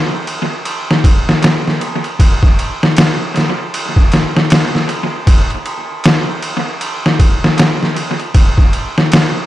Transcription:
0.27 ride
0.65 ride
0.91 snare
1.04 kick, ride
1.29 snare
1.42 snare, ride
1.67 snare
1.81 ride
2.04 ride
2.20 kick, ride
2.43 kick
2.59 ride
2.83 snare
2.97 snare, ride
3.36 snare, ride
3.74 ride
3.96 kick
4.12 snare, ride
4.37 snare
4.50 snare, ride
4.75 snare
4.89 ride
5.27 kick, ride
5.50 ride
5.66 ride
6.04 snare, ride
6.42 ride
6.81 ride
7.06 snare
7.20 kick, ride
7.44 snare
7.58 snare, ride
7.83 snare
7.96 ride
8.20 ride
8.34 kick, ride
8.58 kick
8.73 ride
8.98 snare
9.12 snare, ride

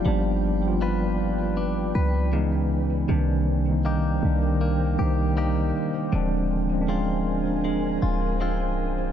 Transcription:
Already playing: A#3 D4 D#4 F4 G5
0.04 G1 F3 G3 B3 D4 B4 D5
0.65 F3 G3 B3 F4
0.81 D4 F4 B4
1.57 D4
1.95 C#2 B4
2.32 C#3 E3 G#3 B3 D#4
3.08 C2 C3 D#3 G3 A#3 D4 A#4 C5 G5
3.68 D#3 G3 A#3 D#4
3.85 A#3 D#4 G4
4.22 C2 D#3 G3 A#3 D4
4.61 A#3
4.98 C2 D#3 G3 A#3 D#4 G4
5.37 A#3 D#4 G4
6.12 D1 D3 F3 G#3 C4 D4 A#4 G#5
6.72 F3 G#3 C4 C#4
6.81 D4
6.88 G#3 C4 F4
7.64 G#3
8.02 D1 F4
8.40 G#3 C4 F4
8.63 C1

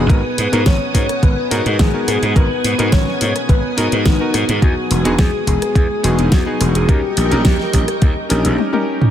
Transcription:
Already playing: B3 G#4 D#6
0.09 G#1 B3 D#4 F#4 A#4 B4 F#5 G#5, kick, closed hi-hat
0.38 G#2, open hi-hat
0.52 G#2 B3 D#4 F#4 A#4, closed hi-hat
0.66 G#1 C#5, kick, snare, closed hi-hat
0.94 G#2 B3 D#4 F#4 A#4 C#5, kick, open hi-hat
1.09 cross-stick, closed hi-hat
1.23 G#1 B4, kick, closed hi-hat
1.51 G#2 B3 D#4 F#4 A#4, open hi-hat
1.66 G#2, closed hi-hat
1.79 G#1 G#4, kick, snare, closed hi-hat
1.93 B3 D#4 F#4 A#4
2.08 G#2, cross-stick, open hi-hat
2.22 G#2, closed hi-hat
2.35 G#1 B3 D#4 F#4 A#4 B4, kick, closed hi-hat
2.64 G#2, open hi-hat
2.78 G#2 B3 D#4 F#4 A#4, closed hi-hat
2.92 G#1 C#5, kick, snare, closed hi-hat
3.07 snare
3.20 G#2 B3 D#4 F#4 A#4 C#5, open hi-hat
3.36 cross-stick, closed hi-hat
3.49 G#1 B4, kick, closed hi-hat
3.77 G#2 B3 D#4 F#4 A#4, open hi-hat
3.92 G#2, closed hi-hat
4.06 G#1 D#4, kick, snare, closed hi-hat
4.20 B3 D#4 F#4 A#4
4.34 G#2, cross-stick, open hi-hat
4.49 G#2, closed hi-hat
4.62 E2 B3 D#4 F#4 G#4, kick, closed hi-hat
4.91 E1, open hi-hat
5.05 E1 B3 D#4 F#4 G#4, closed hi-hat
5.18 E2 G#4, kick, snare, closed hi-hat
5.47 E1 B3 D#4 F#4 G#4, kick, open hi-hat
5.62 cross-stick, closed hi-hat
5.75 E2, kick, closed hi-hat
6.03 E1 B3 D#4 F#4 G#4, open hi-hat
6.18 E1 D#4, closed hi-hat
6.32 E2 F#4, kick, snare, closed hi-hat
6.46 B3 D#4 F#4 G#4
6.61 E1, cross-stick, open hi-hat
6.75 E1 G#4, closed hi-hat
6.88 D#2 C#4 D#4 G4 A#4 D#5 G5 C#6, kick, closed hi-hat
7.17 A#1, open hi-hat
7.31 A#1 C#4 D#4 G4 A#4, closed hi-hat
7.45 D#2, kick, snare, closed hi-hat
7.59 snare
7.73 A#1 C#4 D#4 G4 A#4, kick, open hi-hat
7.88 cross-stick, closed hi-hat
8.02 D#2, kick, closed hi-hat
8.29 A#1 C#4 D#4 G4 A#4, open hi-hat
8.45 A#1, closed hi-hat
8.58 high tom
8.73 C#4 D#4 G4 A#4, high tom
9.01 mid tom

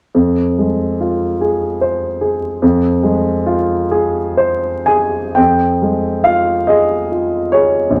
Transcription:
0.14 F2
0.58 G#3
1.00 F4
1.41 G#4
1.81 C5
2.21 G#4
2.62 F2
3.03 G#3
3.46 F4
3.91 G#4
4.37 C5
4.86 G#4 G#5
5.35 F2 G5
5.82 G#3
6.24 F4 F5
6.67 G#4 D#5
7.12 F4
7.52 G#4 C#5
7.90 A#1

